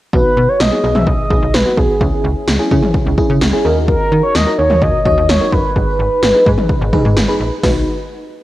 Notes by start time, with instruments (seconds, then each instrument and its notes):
0.13 fm bass B1, fm electric piano B3 D#4 F#4, soft synth lead B4, kick
0.37 fm bass B2
0.49 soft synth lead C#5
0.60 fm bass B1, soft synth lead D#5, snare
0.72 fm electric piano B3 D#4 G#4
0.83 fm bass B1, fm electric piano B3 D#4 G#4
0.95 fm bass B1, soft synth lead E5, mid tom
1.07 fm bass B1, soft synth lead D#5, kick
1.30 fm bass B1, fm electric piano B3 D#4 G#4, kick
1.42 fm bass B1
1.54 fm bass B1, soft synth lead B4, snare
1.66 fm electric piano B3 D#4 F#4
1.77 fm bass B1, soft synth lead G#4, kick
2.01 fm bass C#2, fm electric piano C#4 E4 G#4, kick
2.24 fm bass C#2
2.48 fm bass C#2, snare
2.59 fm electric piano C#4 E4 G#4
2.71 fm bass C#3, fm electric piano C#4 E4 G#4, kick
2.83 mid tom
2.94 kick
3.06 fm bass C#2
3.18 fm electric piano C#4 E4 G#4, kick
3.30 fm bass C#3
3.41 fm bass C#2, snare
3.53 fm electric piano C#4 E4 G#4
3.65 fm bass D#2, fm electric piano D#4 F#4 A#4
3.88 soft synth lead A#4, kick
4.12 fm bass D#3
4.23 soft synth lead C#5
4.35 fm bass D#2, soft synth lead D#5, snare
4.47 fm electric piano D#4 F#4 A#4
4.58 fm bass D#2, fm electric piano D#4 F#4 A#4, soft synth lead C#5
4.70 fm bass D#2, mid tom
4.82 fm bass D#2, soft synth lead D#5, kick
5.05 fm bass D#2, fm electric piano D#4 F#4 C#5, soft synth lead D#5, kick
5.17 fm bass D#2
5.29 fm bass D#2, soft synth lead C#5, snare
5.41 fm electric piano D#4 F#4 A#4
5.52 fm bass F#1, soft synth lead B4, kick
5.76 fm bass G#1, fm electric piano D#4 G#4 B4, kick
5.99 fm bass G#1
6.23 fm bass G#1, snare
6.34 fm electric piano D#4 G#4 B4
6.46 fm bass G#2, fm electric piano D#4 G#4 B4, kick
6.58 mid tom
6.69 kick
6.81 fm bass G#1
6.93 fm electric piano D#4 G#4 B4, kick, mid tom
7.05 fm bass G#2
7.17 fm bass G#1, snare
7.28 fm electric piano D#4 G#4 B4
7.40 fm bass A#1
7.63 fm bass B1, fm electric piano D#4 F#4 B4, kick, snare, open hi-hat